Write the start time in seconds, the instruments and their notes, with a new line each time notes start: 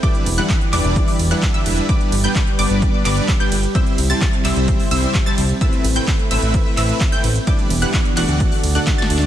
Already playing: analog synth pad E4
0.03 analog synth pad E3 G4 D5, supersaw synth G3 D4 E4 B4 D5, synth pluck D6, kick, closed hi-hat
0.15 closed hi-hat
0.26 analog synth bass E1, open hi-hat, ride
0.38 supersaw synth G3 D4 E4 B4 F#5, synth pluck F#6
0.50 kick, clap, closed hi-hat
0.61 closed hi-hat
0.73 analog synth bass E1, supersaw synth G3 D4 E4 B4 D5, synth pluck D6, clap, open hi-hat, ride
0.84 analog synth bass E1, closed hi-hat
0.96 kick, closed hi-hat
1.08 open hi-hat
1.19 analog synth bass E1, open hi-hat, ride
1.31 supersaw synth G3 D4 E4 B4 F#5, synth pluck F#6, closed hi-hat
1.43 kick, clap, closed hi-hat
1.54 supersaw synth G3 D4 E4 B4 E5, synth pluck E6, closed hi-hat
1.66 analog synth bass E1, open hi-hat, ride
1.77 closed hi-hat
1.89 analog synth pad G3 B4 D5, supersaw synth G3 B3 D4 B4 D5, synth pluck D6, kick, closed hi-hat
2.01 closed hi-hat
2.12 analog synth bass G1, open hi-hat, ride
2.24 supersaw synth G3 B3 D4 B4 G5, synth pluck G6
2.36 kick, clap, closed hi-hat
2.47 closed hi-hat
2.59 analog synth bass G1, supersaw synth G3 B3 D4 B4 D5, synth pluck D6, open hi-hat, ride
2.70 analog synth bass G1, closed hi-hat
2.82 kick, closed hi-hat
3.05 analog synth bass G1, supersaw synth G3 B3 D4 B4 D5, synth pluck D6, clap, open hi-hat, ride
3.17 closed hi-hat
3.28 kick, clap, closed hi-hat
3.40 supersaw synth G3 B3 D4 B4 G5, synth pluck G6
3.52 analog synth bass G1, open hi-hat, ride
3.63 closed hi-hat
3.75 analog synth pad C3 C4 E4, supersaw synth G3 C4 E4 C5 E5, synth pluck E6, kick, closed hi-hat
3.87 closed hi-hat
3.98 analog synth bass C2, open hi-hat, ride
4.10 supersaw synth G3 C4 E4 C5 A5, synth pluck A6, closed hi-hat
4.22 kick, clap, closed hi-hat
4.33 closed hi-hat
4.45 analog synth bass C2, supersaw synth G3 C4 E4 C5 E5, synth pluck E6, clap, open hi-hat, ride
4.56 analog synth bass C2, closed hi-hat
4.68 kick, closed hi-hat
4.80 open hi-hat
4.91 analog synth bass C2, supersaw synth G3 C4 E4 C5 E5, synth pluck E6, open hi-hat, ride
5.03 closed hi-hat
5.14 kick, clap, closed hi-hat
5.26 supersaw synth G3 C4 E4 C5 A5, synth pluck A6
5.38 analog synth bass C2, open hi-hat, ride
5.49 closed hi-hat
5.61 analog synth pad A3 E4 B4, supersaw synth A3 C4 E4 B4 E5, synth pluck E6, kick, closed hi-hat
5.73 closed hi-hat
5.84 analog synth bass A1, open hi-hat, ride
5.96 supersaw synth A3 C4 E4 B4 G5, synth pluck G6, closed hi-hat
6.08 kick, clap, closed hi-hat
6.19 closed hi-hat
6.31 analog synth bass A1, supersaw synth A3 C4 E4 B4 E5, synth pluck E6, open hi-hat, ride
6.42 analog synth bass A1, closed hi-hat
6.54 kick, closed hi-hat
6.77 analog synth bass A1, supersaw synth A3 C4 E4 B4 E5, synth pluck E6, clap, open hi-hat, ride
6.89 closed hi-hat
7.01 kick, clap, closed hi-hat
7.12 supersaw synth A3 C4 E4 B4 G5, synth pluck G6
7.24 analog synth bass A1, open hi-hat, ride
7.36 closed hi-hat
7.47 analog synth pad E3 B3 G4 D5, supersaw synth G3 D4 E4 B4 D5, synth pluck D6, kick, closed hi-hat
7.59 closed hi-hat
7.70 analog synth bass E1, open hi-hat, ride
7.82 supersaw synth G3 D4 E4 B4 F#5, synth pluck F#6, closed hi-hat
7.94 kick, clap, closed hi-hat
8.05 closed hi-hat
8.17 analog synth bass E1, supersaw synth A3 D4 F#4 D5 F#5, synth pluck F#6, clap, open hi-hat, ride
8.29 analog synth bass D2, closed hi-hat
8.40 analog synth pad D3 A3 F#4, kick, closed hi-hat
8.52 open hi-hat
8.63 analog synth bass D2, open hi-hat, ride
8.75 supersaw synth A3 D4 F#4 D5 F#5, synth pluck F#6, closed hi-hat
8.87 kick, snare, clap, closed hi-hat
8.98 supersaw synth A3 D4 F#4 D5 A5, synth pluck A6, snare, closed hi-hat
9.10 analog synth bass D2, open hi-hat, ride
9.18 snare, closed hi-hat